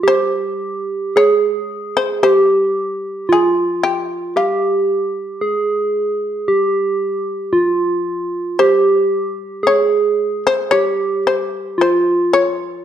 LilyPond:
<<
  \new Staff \with { instrumentName = "Shamisen" } { \time 4/4 \tempo 4 = 56 c''4 des''8. c''16 c''4 aes'8 g'8 | f'2.~ f'8 r8 | c''4 des''8. c''16 des''8 c''8 c''8 des''8 | }
  \new Staff \with { instrumentName = "Soft synth lead" } { \time 4/4 g'4 aes'4 g'4 f'4 | g'4 aes'4 g'4 f'4 | g'4 aes'4 g'4 f'4 | }
>>